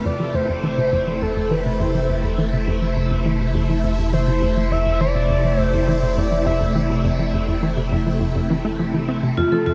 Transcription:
Already playing: string machine C3 A3
0.05 sub bass F1, synth arpeggio sound F2, string machine E4, analog synth lead D5
0.20 synth arpeggio sound F3
0.34 synth arpeggio sound F2, analog synth lead C5
0.49 synth arpeggio sound F2
0.64 synth arpeggio sound E3
0.78 synth arpeggio sound C3
0.93 synth arpeggio sound F2
1.07 synth arpeggio sound F3
1.22 synth arpeggio sound F2, analog synth lead A4
1.36 synth arpeggio sound F2
1.51 synth arpeggio sound E3, analog synth lead B4
1.66 synth arpeggio sound C3
1.80 synth arpeggio sound F2, analog synth lead C5
1.95 synth arpeggio sound F3
2.09 synth arpeggio sound F2
2.24 synth arpeggio sound F2
2.38 synth arpeggio sound E3
2.53 synth arpeggio sound C3
2.68 synth arpeggio sound F2
2.82 synth arpeggio sound F3
2.97 synth arpeggio sound F2
3.11 synth arpeggio sound F2
3.26 synth arpeggio sound E3
3.40 synth arpeggio sound C3
3.55 synth arpeggio sound F2
3.69 synth arpeggio sound F3
3.84 synth arpeggio sound F2
3.99 synth arpeggio sound F2
4.13 synth arpeggio sound E3, analog synth lead C5
4.28 synth arpeggio sound C3
4.42 synth arpeggio sound F2
4.57 synth arpeggio sound F3
4.71 synth arpeggio sound F2, analog synth lead E5
4.86 synth arpeggio sound F2
5.01 synth arpeggio sound E3, analog synth lead D5
5.15 synth arpeggio sound C3
5.30 synth arpeggio sound F2
5.44 synth arpeggio sound F3
5.59 synth arpeggio sound F2, analog synth lead C5
5.74 synth arpeggio sound F2
5.88 synth arpeggio sound E3, analog synth lead C5
6.03 synth arpeggio sound C3
6.17 synth arpeggio sound F2, analog synth lead D5
6.32 synth arpeggio sound F3
6.46 synth arpeggio sound F2, analog synth lead E5
6.61 synth arpeggio sound F2
6.75 synth arpeggio sound E3
6.90 synth arpeggio sound C3
7.05 synth arpeggio sound F2
7.19 synth arpeggio sound F3
7.34 synth arpeggio sound F2
7.48 synth arpeggio sound F2
7.63 synth arpeggio sound E3
7.77 synth arpeggio sound C3
7.92 synth arpeggio sound F2
8.06 synth arpeggio sound F3
8.21 synth arpeggio sound F2
8.36 synth arpeggio sound F2
8.50 synth arpeggio sound E3
8.65 synth arpeggio sound A3
8.79 synth arpeggio sound F3
8.94 synth arpeggio sound E3
9.09 synth arpeggio sound C4
9.23 synth arpeggio sound C3
9.37 sub bass F1, synth arpeggio sound F2, string machine F3, vibraphone F4
9.52 synth arpeggio sound F3, vibraphone A4
9.66 synth arpeggio sound F2, vibraphone F4

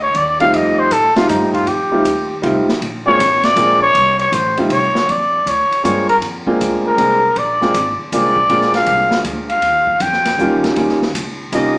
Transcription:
Already playing: upright bass D2
0.02 trumpet C#5
0.14 upright bass D#2, trumpet D5, kick, ride
0.40 grand piano G3 A3 C4 D#4 F4, trumpet F5, ride
0.53 upright bass F2, trumpet D#5, kick, ride
0.79 trumpet C5
0.91 upright bass A2, trumpet A4, kick, hi-hat pedal, ride
1.16 grand piano G3 A3 C4 D#4 F4, trumpet F4, muted upright bass stroke, snare, ride
1.29 upright bass G2, trumpet D#4, kick, hi-hat pedal, ride
1.53 trumpet F4, kick, ride
1.67 upright bass F2, trumpet G4, kick, ride
1.92 grand piano G3 A3 C4 D#4 F4
2.05 upright bass D#2, kick, hi-hat pedal, ride
2.42 upright bass C2, grand piano G3 A3 C4 D#4 F4, kick, ride
2.67 muted upright bass stroke, snare
2.81 upright bass A#1, kick, ride
3.06 grand piano G#3 A#3 C4 D4 F4, trumpet C#5
3.19 upright bass G#1, kick, hi-hat pedal, ride
3.43 trumpet D5, snare, ride
3.56 upright bass A#1, grand piano G#3 A#3 C4 D4 F4, kick, hi-hat pedal, ride
3.82 trumpet C#5
3.95 upright bass C2, kick, ride
4.19 trumpet C#5, ride
4.32 upright bass A1, trumpet C5, kick, hi-hat pedal, ride
4.57 grand piano G3 A3 C4 D#4 F4, ride
4.70 upright bass C2, trumpet C#5, kick, ride
4.95 muted upright bass stroke, snare
5.08 upright bass F2, trumpet D5, kick, ride
5.46 upright bass D2, trumpet C#5, kick, hi-hat pedal, ride
5.71 muted upright bass stroke, ride
5.83 upright bass G2, grand piano G#3 A#3 C4 D4 F4, trumpet C#5, kick, hi-hat pedal, ride
6.09 trumpet A#4, ride
6.21 upright bass F2, kick, ride
6.46 grand piano G#3 A#3 C4 D4 F4, kick
6.60 upright bass D2, kick, hi-hat pedal, ride
6.87 trumpet A#4
6.97 upright bass C2, grand piano G#3 A#3 C4 D4 G#4, kick, ride
7.36 upright bass A#1, trumpet D5, kick, ride
7.61 grand piano G#3 A#3 C4 D4 F4, snare
7.74 upright bass G#1, kick, hi-hat pedal, ride
7.98 muted upright bass stroke
8.12 upright bass C2, grand piano G#3 A#3 C4 D4 F4, trumpet D5, kick, hi-hat pedal, ride
8.36 kick
8.49 upright bass A#1, grand piano G#3 A#3 C4 D4 F4, kick, ride
8.61 snare
8.74 trumpet F5, snare, ride
8.86 upright bass C2, kick, ride
9.11 muted upright bass stroke, snare
9.24 upright bass D2, kick, hi-hat pedal, ride
9.50 trumpet F5, ride
9.62 upright bass D#2, kick, ride
9.87 kick
10.00 upright bass F2, trumpet G5, kick, hi-hat pedal, ride
10.13 snare
10.25 snare, ride
10.38 upright bass G2, grand piano G3 A#3 C#4 D#4 F4, kick, hi-hat pedal
10.51 upright bass D#2
10.64 upright bass C#2, snare, ride
10.76 upright bass D#2, grand piano G3 A#3 C#4 D#4 F4, kick, ride
10.89 snare
11.02 snare
11.14 upright bass C#2, kick, hi-hat pedal, ride
11.52 upright bass C2, grand piano G3 A#3 C#4 D#4 F4, trumpet D#5, kick, hi-hat pedal, ride

